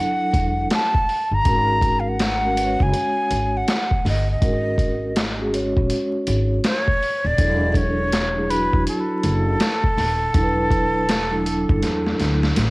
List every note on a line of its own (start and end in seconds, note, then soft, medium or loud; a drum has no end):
0.00 0.68 F#3 medium
0.00 0.68 D4 medium
0.00 0.69 E4 medium
0.00 0.70 A4 medium
0.00 0.68 F#5 loud
0.33 0.64 E1 medium
0.33 kick medium
0.33 closed hi-hat medium
0.70 1.36 A5 loud
0.70 snare loud
0.70 closed hi-hat medium
0.95 kick medium
1.09 open hi-hat soft
1.31 1.43 G1 medium
1.31 2.01 A#5 loud
1.43 2.76 G#1 medium
1.43 2.14 G#3 medium
1.43 2.14 C#4 medium
1.43 2.15 F#4 medium
1.43 2.15 A#4 medium
1.43 kick loud
1.43 closed hi-hat medium
1.81 kick medium
1.81 closed hi-hat medium
2.00 2.10 F5 medium
2.08 2.84 F#5 medium
2.19 snare medium
2.19 closed hi-hat medium
2.41 2.52 G#3 medium
2.41 2.52 C#4 medium
2.41 2.53 F#4 medium
2.41 2.54 A#4 medium
2.54 3.64 G#3 medium
2.54 3.65 C#4 medium
2.54 3.65 F#4 medium
2.54 closed hi-hat medium
2.64 3.69 C#5 medium
2.80 2.91 F#1 medium
2.80 3.58 G#5 loud
2.80 kick medium
2.94 closed hi-hat medium
3.31 3.61 G#1 medium
3.31 closed hi-hat medium
3.57 4.06 F#5 medium
3.68 snare loud
3.68 closed hi-hat medium
3.91 kick medium
4.05 4.35 G1 medium
4.05 4.28 D#5 medium
4.05 snare soft
4.05 open hi-hat soft
4.31 5.37 D#5 medium
4.40 5.72 G#1 medium
4.40 5.10 G#3 medium
4.40 5.11 C#4 medium
4.40 5.11 F#4 medium
4.40 5.12 A#4 medium
4.40 kick loud
4.40 closed hi-hat medium
4.78 kick medium
4.78 closed hi-hat medium
5.16 snare medium
5.16 closed hi-hat medium
5.37 5.48 G#3 medium
5.37 5.49 C#4 medium
5.37 5.49 F#4 medium
5.37 5.50 G#4 loud
5.51 6.61 G#3 medium
5.51 6.61 C#4 medium
5.51 6.62 F#4 medium
5.51 6.62 C#5 medium
5.51 closed hi-hat medium
5.77 5.88 A#1 medium
5.77 kick medium
5.90 closed hi-hat medium
6.27 6.57 G#1 medium
6.27 closed hi-hat medium
6.64 7.28 C#5 loud
6.64 snare loud
6.64 closed hi-hat medium
6.88 kick medium
7.02 open hi-hat soft
7.24 7.36 D#1 medium
7.24 7.72 D5 loud
7.36 8.68 E1 medium
7.36 8.06 F#3 medium
7.36 8.07 D4 medium
7.36 8.07 E4 medium
7.36 8.08 A4 medium
7.36 kick loud
7.36 closed hi-hat medium
7.72 7.78 D5 medium
7.72 kick medium
7.72 closed hi-hat medium
7.77 8.51 C#5 loud
8.12 snare medium
8.12 closed hi-hat medium
8.34 8.45 F#3 medium
8.34 8.45 D4 medium
8.34 8.46 E4 medium
8.34 8.46 G#4 medium
8.47 9.57 F#3 medium
8.47 9.58 D4 medium
8.47 9.58 E4 medium
8.47 9.59 F#4 medium
8.47 8.87 B4 loud
8.47 closed hi-hat medium
8.73 8.84 E1 medium
8.73 kick medium
8.87 12.53 A4 loud
8.87 closed hi-hat medium
9.23 9.54 F#1 medium
9.23 closed hi-hat medium
9.60 snare loud
9.60 closed hi-hat medium
9.84 kick medium
9.97 10.27 D#1 medium
9.97 snare soft
9.97 open hi-hat soft
10.33 11.65 E1 medium
10.33 11.03 F#3 medium
10.33 11.03 D4 medium
10.33 11.04 E4 medium
10.33 10.43 A4 medium
10.33 kick loud
10.33 closed hi-hat medium
10.43 11.08 B4 medium
10.71 kick medium
10.71 closed hi-hat medium
11.09 snare medium
11.09 closed hi-hat medium
11.30 11.41 F#3 medium
11.30 11.41 D4 medium
11.30 11.42 E4 medium
11.30 11.42 A4 medium
11.44 12.53 F#3 medium
11.44 12.54 D4 medium
11.44 12.55 E4 medium
11.44 12.55 A4 medium
11.44 closed hi-hat medium
11.69 11.80 F#1 medium
11.69 kick medium
11.82 12.13 E2 medium
11.82 snare soft
11.82 closed hi-hat medium
12.07 snare medium
12.20 12.50 D2 medium
12.20 snare medium
12.20 closed hi-hat medium
12.43 snare medium
12.56 12.70 A1 medium
12.56 snare medium
12.56 closed hi-hat medium